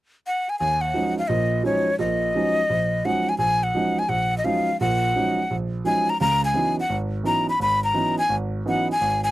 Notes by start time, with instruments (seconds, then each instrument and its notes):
0.27 flute F#5
0.49 flute G#5
0.59 grand piano D#2, flute G#5
0.81 flute F#5
0.94 grand piano F3 F#3 G#3 C#4 D#4
1.19 flute F5
1.28 grand piano A#1 A#2, flute D#5
1.63 grand piano F3 F#3 G#3 C#4 D#4, flute C#5
1.99 grand piano A#1 A#2, flute D#5
2.35 grand piano F3 F#3 G#3 C#4 D#4
2.70 grand piano A#1
3.05 grand piano F3 F#3 G#3 C#4 D#4, flute F#5
3.29 flute G#5
3.38 grand piano A#1, flute G#5
3.63 flute F#5
3.75 grand piano F3 F#3 G#3 C#4 D#4
3.99 flute G#5
4.09 grand piano A#1, flute F#5
4.38 flute D#5
4.44 grand piano F3 F#3 G#3 C#4 D#4, flute F5
4.81 grand piano A#1 A#2, flute F#5
5.16 grand piano F3 F#3 G#3 C#4 D#4
5.51 grand piano A#1
5.85 grand piano F3 F#3 G#3 C#4 D#4, flute G#5
6.10 flute A#5
6.20 grand piano C#2 C#3, flute A#5
6.45 flute G#5
6.54 grand piano E3 F#3 B3 C#4 D#4
6.80 flute F#5
6.90 grand piano G#1
7.24 grand piano E3 F#3 B3 C#4 D#4, flute A#5
7.49 flute B5
7.60 grand piano G#1, flute B5
7.84 flute A#5
7.93 grand piano E3 F#3 B3 C#4 D#4
8.18 flute G#5
8.29 grand piano G#1
8.66 grand piano E3 F#3 B3 C#4 D#4, flute F#5
8.92 flute G#5
9.01 grand piano G#1
9.24 flute G#5